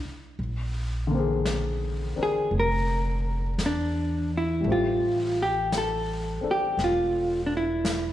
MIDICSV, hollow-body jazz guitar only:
0, 0, Header, 1, 2, 480
1, 0, Start_track
1, 0, Tempo, 1067616
1, 172, Time_signature, 4, 2, 24, 8
1, 3654, End_track
2, 0, Start_track
2, 0, Title_t, "Hollow-body jazz guitar"
2, 0, Program_c, 0, 26
2, 1001, Note_on_c, 0, 68, 73
2, 1136, Note_off_c, 0, 68, 0
2, 1167, Note_on_c, 0, 70, 77
2, 1643, Note_off_c, 0, 70, 0
2, 1645, Note_on_c, 0, 62, 64
2, 1937, Note_off_c, 0, 62, 0
2, 1967, Note_on_c, 0, 64, 70
2, 2109, Note_off_c, 0, 64, 0
2, 2122, Note_on_c, 0, 65, 72
2, 2435, Note_off_c, 0, 65, 0
2, 2439, Note_on_c, 0, 67, 75
2, 2589, Note_off_c, 0, 67, 0
2, 2598, Note_on_c, 0, 69, 74
2, 2920, Note_off_c, 0, 69, 0
2, 2927, Note_on_c, 0, 67, 74
2, 3068, Note_off_c, 0, 67, 0
2, 3075, Note_on_c, 0, 65, 69
2, 3328, Note_off_c, 0, 65, 0
2, 3356, Note_on_c, 0, 62, 55
2, 3388, Note_off_c, 0, 62, 0
2, 3403, Note_on_c, 0, 64, 71
2, 3654, Note_off_c, 0, 64, 0
2, 3654, End_track
0, 0, End_of_file